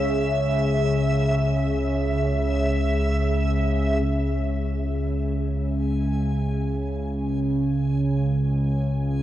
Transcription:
Already playing: C#2 C#3 C#4 G#4 C#5 E5
4.03 C#2 C#3 G#5

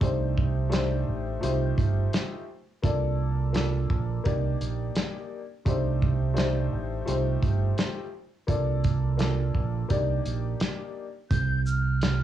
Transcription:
0.01 C2 A3 D4 D#4 G4 C5, kick, closed hi-hat
0.38 kick
0.70 A3 D4 D#4 G4 C5, closed hi-hat
0.74 snare
1.08 A1
1.41 C2 A3 D#4 F4 G4 C5, closed hi-hat
1.78 G1, kick, closed hi-hat
2.13 snare, closed hi-hat
2.82 C2 A#3 D4 F4 A4 D5, kick, closed hi-hat
3.53 A#3 D4 F4 A4 D5, snare, closed hi-hat
3.90 A#1, kick
4.24 C2 A#3 D4 D#4 G4 D5, kick, closed hi-hat
4.61 A#1, closed hi-hat
4.95 snare, closed hi-hat
5.65 C2 A3 D4 D#4 G4 C5, kick, closed hi-hat
6.02 kick
6.34 A3 D4 D#4 G4 C5, closed hi-hat
6.38 snare
6.73 A1
7.05 C2 A3 D#4 F4 G4 C5, closed hi-hat
7.43 G1, kick, closed hi-hat
7.78 snare, closed hi-hat
8.47 C2 A#3 D4 F4 A4 D5, kick, closed hi-hat
8.84 kick, closed hi-hat
9.17 A#3 D4 F4 A4 D5, snare, closed hi-hat
9.55 A#1, kick
9.88 C2 A#3 D4 D#4 G4 D5, kick, closed hi-hat
10.26 A#1, closed hi-hat
10.60 snare, closed hi-hat
11.30 C2 G6, kick, closed hi-hat
11.66 F6, shaker
12.01 snare, closed hi-hat

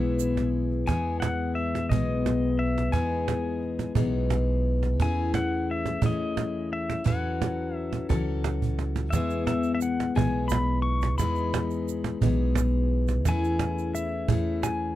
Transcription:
Already playing: B1 E3 G#3 B3 E4 G#4 E5
0.19 cajon slap, shaker
0.37 cajon slap
0.72 cajon slap
0.87 E2 E3 G#3 B3 G#4 G#5, cajon bass, cajon slap
1.20 F#5, cajon slap
1.55 E5, cajon slap
1.75 cajon slap
1.89 B1 E3 G#3 B3 G#4 D#5, cajon bass
2.26 cajon slap
2.59 E5
2.78 cajon slap
2.92 E2 E3 G#3 B3 D#4 G#4 G#5, cajon bass, cajon slap
3.28 cajon slap
3.62 cajon slap
3.79 cajon slap
3.95 B1 E3 G#3 B3 D#4 G#4, cajon bass
4.30 cajon slap
4.83 cajon slap
5.00 E2 E3 A3 C#4 E4 G#4 G#5, cajon bass, cajon slap
5.34 F#5, cajon slap
5.71 E5
5.86 cajon slap
6.02 E2 E3 A3 C#4 E4 G#4, cajon bass
6.06 D#5
6.37 cajon slap
6.73 E5
6.90 cajon slap
7.04 E2 E3 F#3 C#4 F#4 A4 F#5, cajon bass
7.42 cajon slap
7.76 E5
7.93 cajon slap
8.09 C#2 E3 F#3 C#4 F#4 A4, cajon bass, cajon slap
8.44 cajon slap
8.62 cajon bass
8.79 cajon slap
8.96 cajon slap
9.10 E2 E3 G#3 B3 G#4 E5, cajon bass, cajon slap, shaker
9.30 shaker
9.47 E5, cajon slap, shaker
9.63 shaker
9.75 E5
9.81 F#5, cajon slap, shaker
10.00 cajon slap
10.15 B1 E3 G#3 B3 D#4 G#4 G#5, cajon bass
10.48 B5, cajon slap, shaker
10.82 C#6
11.02 cajon slap, shaker
11.18 E2 E3 G#3 B3 D#4 G#4 B5, cajon bass, cajon slap, shaker
11.35 shaker
11.54 cajon slap, shaker
11.71 shaker
11.88 cajon slap, shaker
12.04 cajon slap
12.21 B1 E3 G#3 B3 D#4 G#4, cajon bass
12.55 cajon slap, shaker
13.08 cajon slap, shaker
13.24 E2 E3 A3 C#4 E4 G#4, cajon bass, cajon slap, shaker
13.29 G#5
13.44 shaker
13.59 cajon slap, shaker
13.79 shaker
13.94 E5, cajon slap, shaker
14.28 E2 E3 A3 C#4 E4 G#4, cajon bass
14.63 G#5, cajon slap, shaker

